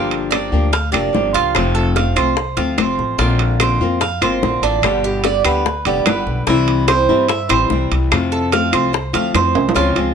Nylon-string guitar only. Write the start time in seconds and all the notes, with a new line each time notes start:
Already playing: D3 F3 A#3 D4 G4
0.33 F3 A#3 D4 G4
0.52 F3 A#3 D4 G4
0.72 muted nylon-string guitar stroke
0.92 F3 A#3 D4 G4
1.13 F3 A#3 D4 G4
1.55 C3 F3 A3 C4 F4
1.97 F3 A3 C4 F4
2.16 F3 A3 C4 F4
2.37 muted nylon-string guitar stroke
2.57 F3 A3 C4 F4
2.78 F3 A3 C4 F4
3.19 D3 A#3 C4 F4
3.60 D3 A#3 C4 F4
3.81 A#3 C4 F4
4.02 muted nylon-string guitar stroke
4.21 A#3 C4 F4
4.43 D3 A#3 C4 F4
4.83 B2 D3 G3 B3 G4
5.24 D3 G3 B3 G4
5.45 D3 G3 B3 G4
5.66 muted nylon-string guitar stroke
5.86 D3 G3 B3 G4
6.07 D3 G3 B3 G4
6.47 C3 E3 G3 C4 E4
6.88 E3 G3 C4 E4
7.09 E3 G3 C4 E4
7.29 muted nylon-string guitar stroke
7.49 E3 G3 C4 E4
7.70 E3 G3 C4 E4
8.11 C3 F3 A3 C4 F4
8.52 F3 A3 C4 F4
8.72 F3 A3 C4 F4
8.93 muted nylon-string guitar stroke
9.13 F3 A3 C4 F4
9.34 F3 A3 C4 F4
9.74 C#3 F3 G#3 C4 F4
9.95 F3 G#3 C4 F4